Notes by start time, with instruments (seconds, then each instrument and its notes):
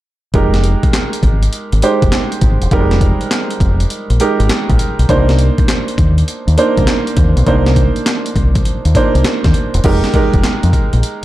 0.34 fingered electric bass F1, grand piano G#3 D#4 G4 A#4, kick, closed hi-hat
0.54 snare, closed hi-hat
0.64 closed hi-hat
0.83 kick, closed hi-hat
0.93 snare, clap, closed hi-hat
1.13 closed hi-hat
1.23 fingered electric bass G#1, kick, closed hi-hat
1.43 closed hi-hat
1.53 closed hi-hat
1.72 fingered electric bass G#1, closed hi-hat
1.82 grand piano G#3 D#4 G4 C5, closed hi-hat
2.02 fingered electric bass F1, kick, closed hi-hat
2.12 snare, clap, closed hi-hat
2.32 closed hi-hat
2.41 fingered electric bass G#1, kick, closed hi-hat
2.62 fingered electric bass E1, closed hi-hat
2.71 fingered electric bass F1, grand piano G3 D#4 G4 A#4, kick, closed hi-hat
2.78 grand piano G#3
2.91 snare, closed hi-hat
3.01 kick, closed hi-hat
3.21 closed hi-hat
3.31 snare, clap, closed hi-hat
3.51 closed hi-hat
3.60 fingered electric bass F1, kick, closed hi-hat
3.80 closed hi-hat
3.90 closed hi-hat
4.10 fingered electric bass A#1, closed hi-hat
4.20 grand piano G#3 D#4 G4 A#4, closed hi-hat
4.40 fingered electric bass G#1, closed hi-hat
4.49 snare, clap, closed hi-hat
4.70 fingered electric bass A#1, kick, closed hi-hat
4.79 closed hi-hat
4.99 fingered electric bass B1, closed hi-hat
5.09 fingered electric bass C2, grand piano A#3 D4 D#4 C5, kick, closed hi-hat
5.29 snare, closed hi-hat
5.39 closed hi-hat
5.58 kick, closed hi-hat
5.68 snare, clap, closed hi-hat
5.88 closed hi-hat
5.98 fingered electric bass D#2, kick, closed hi-hat
6.18 closed hi-hat
6.28 closed hi-hat
6.47 fingered electric bass D#2, closed hi-hat
6.58 grand piano A#3 D4 D#4 C5, closed hi-hat
6.77 fingered electric bass C2, kick, closed hi-hat
6.87 snare, clap, closed hi-hat
7.07 closed hi-hat
7.17 fingered electric bass D#2, kick, closed hi-hat
7.37 fingered electric bass B1, closed hi-hat
7.47 fingered electric bass C2, grand piano A#3 D4 D#4 C5, kick, closed hi-hat
7.66 snare, closed hi-hat
7.76 kick, closed hi-hat
7.96 closed hi-hat
8.06 snare, clap, closed hi-hat
8.26 closed hi-hat
8.36 fingered electric bass C2, kick, closed hi-hat
8.55 kick, closed hi-hat
8.65 closed hi-hat
8.85 fingered electric bass D#2, closed hi-hat
8.95 grand piano A#3 D4 D#4 C5, kick, closed hi-hat
9.15 fingered electric bass C2, closed hi-hat
9.24 muted fingered electric bass stroke, snare, clap, closed hi-hat
9.44 fingered electric bass D#2, kick, snare, closed hi-hat
9.54 closed hi-hat
9.74 fingered electric bass E1, closed hi-hat
9.84 fingered electric bass F1, grand piano G#3 D#4 G4 A#4, kick, closed hi-hat, crash
10.04 snare, closed hi-hat
10.14 grand piano G#3 D#4 G4 A#4, kick, closed hi-hat
10.33 fingered electric bass F1, kick, closed hi-hat
10.44 muted fingered electric bass stroke, snare, clap, closed hi-hat
10.63 fingered electric bass F2, closed hi-hat
10.73 kick, closed hi-hat
10.93 fingered electric bass A#1, closed hi-hat
11.03 closed hi-hat